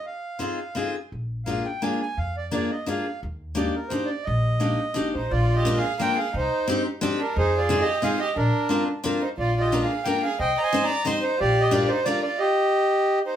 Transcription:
<<
  \new Staff \with { instrumentName = "Accordion" } { \time 3/4 \key bes \mixolydian \tempo 4 = 176 << { f''2~ f''8 r8 | r4 f''8 g''8 aes''8 aes''8 | f''8 d''8 d''8 ees''8 f''4 | r4 d''8 bes'8 c''8 d''8 |
ees''2~ ees''8 c''8 | \tuplet 3/2 { d''4 ees''8~ ees''8 f''4 } g''8 f''8 | c''4. r4 bes'8 | \tuplet 3/2 { c''4 d''8~ d''8 ees''4 } f''8 ees''8 |
bes'4. r4 c''8 | \tuplet 3/2 { d''4 ees''8~ ees''8 f''4 } g''8 f''8 | \tuplet 3/2 { g''8. bes''16 aes''8~ aes''8 bes''4 } c'''8 c''8 | \tuplet 3/2 { d''4 ees''8 } d''8 c''8 d''8 d''8 |
ees''2~ ees''8 c''8 | } \\ { r2. | r2. | r2. | r2. |
r2. | f'4. r4. | ees'4. r4. | aes'4. r4. |
d'4. r4. | f'4. r4. | ees''4. r4. | g'4. r4. |
g'2~ g'8 r8 | } >> }
  \new Staff \with { instrumentName = "Violin" } { \time 3/4 \key bes \mixolydian r2. | r2. | r2. | r2. |
r2 r8 ees'8 | \tuplet 3/2 { f'4 g'8~ g'8 aes'4 } bes'8 aes'8 | ees'4. r4 d'8 | \tuplet 3/2 { ees'4 f'8~ f'8 g'4 } aes'8 g'8 |
d'4. r4 ees'8 | \tuplet 3/2 { f'4 g'8~ g'8 aes'4 } bes'8 aes'8 | \tuplet 3/2 { c''8. d''16 c''8~ c''8 d''4 } ees''8 ees'8 | \tuplet 3/2 { f'4 g'8 } f'8 ees'8 f'8 f'8 |
r2 r8 ees'8 | }
  \new Staff \with { instrumentName = "Steel-string acoustic guitar" } { \time 3/4 \key bes \mixolydian r4 <c' ees' f' aes'>8 r8 <c' ees' f' aes'>8 r8 | r4 <bes d' f' aes'>8 r8 <bes d' f' aes'>8 r8 | r4 <bes d' f' aes'>8 r8 <bes d' f' aes'>8 r8 | r4 <bes d' ees' g'>8 r8 <bes d' ees' g'>8 r8 |
r4 <bes d' ees' g'>8 r8 <bes d' ees' g'>8 r8 | r4 <bes c' d' f'>8 r8 <bes c' d' f'>8 r8 | r4 <c' d' ees' g'>8 r8 <c' d' ees' g'>8 r8 | r4 <c' ees' f' aes'>8 r8 <c' ees' f' aes'>8 r8 |
r4 <c' d' f' bes'>8 r8 <c' d' f' bes'>8 r8 | r4 <bes d' f' bes'>8 r8 <bes d' f' bes'>8 r8 | r4 <c' ees' g' c''>8 r8 <c' ees' g' c''>8 r8 | r4 <d' f' g' bes'>8 r8 <d' f' g' bes'>8 r8 |
r2. | }
  \new Staff \with { instrumentName = "Upright bass" } { \clef bass \time 3/4 \key bes \mixolydian r2. | bes,,2 r4 | f,2 r4 | ees,2 r4 |
bes,,2 g,,8 bes,,8 | bes,,2 r4 | c,8 r2 r8 | f,2 r4 |
bes,,8 r2 r8 | bes,,2 r4 | c,8 r2 r8 | bes,,2 r4 |
r2. | }
>>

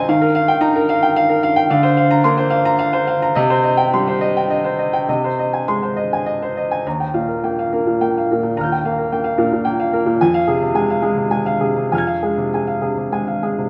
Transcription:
<<
  \new Staff \with { instrumentName = "Upright piano" } { \time 3/4 \key ees \major \tempo 4 = 106 << { r2. | r2. | r2. | r2. |
r2. | <f''' g'''>2. | r2. | <f''' aes'''>2. | } \\ { f''16 bes'16 f''16 g''16 bes''16 bes'16 f''16 g''16 f''16 bes'16 f''16 g''16 | f''16 c''16 f''16 bes''16 c'''16 c''16 f''16 bes''16 f''16 c''16 f''16 bes''16 | ees''16 c''16 ees''16 g''16 c'''16 c''16 ees''16 g''16 ees''16 c''16 ees''16 g''16 | ees''16 c''16 ees''16 aes''16 c'''16 c''16 ees''16 aes''16 ees''16 c''16 ees''16 aes''16 |
bes''16 g''16 f''16 bes'16 g''16 f''16 bes'16 bes,16 g''16 f''16 bes'16 bes,16 | bes''16 g''16 f''16 bes'16 g''16 f''16 bes'16 bes,16 g''16 f''16 bes'16 bes,16 | aes''16 f''16 aes'16 c16 aes''16 f''16 aes'16 c16 aes''16 f''16 aes'16 c16 | aes''16 f''16 aes'16 c16 aes''16 f''16 aes'16 c16 aes''16 f''16 aes'16 c16 | } >> }
  \new Staff \with { instrumentName = "Upright piano" } { \clef bass \time 3/4 \key ees \major ees4 ees'2 | d4 bes2 | c4 g2 | c4 aes2 |
ees,8 bes,8 bes8 bes8 bes8 bes,8 | ees,8 bes8 bes8 bes,8 bes8 bes8 | f,8 c8 aes8 aes8 aes8 c8 | f,8 aes8 aes8 c8 aes8 aes8 | }
>>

